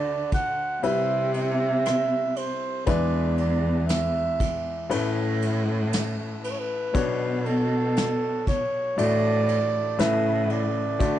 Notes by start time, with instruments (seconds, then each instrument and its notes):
Already playing: upright piano D2 D3 A3 D4 F#4 D5, cello D3, flugelhorn D5
0.32 flugelhorn F#5, kick, ride
0.83 upright piano C2 C3 G3 C4 E4 B4, cello C3, flugelhorn E5, ride
1.34 flugelhorn E5, ride
1.85 cross-stick, ride
2.36 flugelhorn C5, ride
2.86 upright piano E2 E3 G#3 D4 E4 B4, cello E2, flugelhorn D5, kick, ride
3.38 flugelhorn D5, ride
3.87 flugelhorn E5, snare, ride
4.40 kick, ride
4.90 upright piano A1 A2 A3 C#4 E4 B4, cello A2, ride
5.42 ride
5.93 snare, ride
6.44 flugelhorn B4, ride
6.51 flugelhorn C#5
6.59 flugelhorn B4
6.94 upright piano B1 B2 B3 D4 F#4 C#5, cello B2, kick, ride
7.46 flugelhorn A4, ride
7.96 snare, ride
8.47 flugelhorn C#5, kick, ride
8.97 upright piano A1 A2 A3 D4 F#4 D5, cello A2, flugelhorn D5, ride
9.48 ride
9.99 upright piano A1 A2 C#3 A3 E4 B4, cello A2, flugelhorn E5, snare, ride
10.50 flugelhorn D5, ride
10.99 upright piano D2 D3 A3 D4 F#4 D5, cello D3, kick, ride